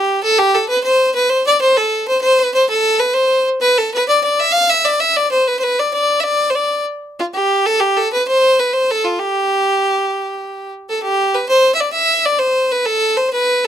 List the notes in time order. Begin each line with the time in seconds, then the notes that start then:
Already playing: G4
0.23 A4
0.39 G4
0.55 A4
0.68 B4
0.84 C5
1.15 B4
1.30 C5
1.47 D5
1.61 C5
1.77 A4
2.08 C5
2.21 C5
2.39 B4
2.54 C5
2.70 A4
2.99 B4
3.14 C5
3.61 B4
3.78 A4
3.94 B4
4.09 D5
4.24 D5
4.40 E5
4.52 F5
4.70 E5
4.85 D5
5.00 E5
5.17 D5
5.31 C5
5.47 B4
5.59 C5
5.63 B4
5.79 D5
5.94 D5
6.20 D5 E5
6.50 C5
6.55 D5
7.20 F4
7.34 G4
7.66 A4
7.80 G4
7.97 A4
8.13 B4
8.28 C5
8.59 B4
8.73 C5
8.91 A4
9.05 F4
9.19 G4
10.89 A4
11.03 G4
11.34 B4
11.49 C5
11.75 E5
11.80 D5
11.93 E5
12.25 D5
12.39 C5
12.72 B4
12.86 A4
13.17 C5
13.33 B4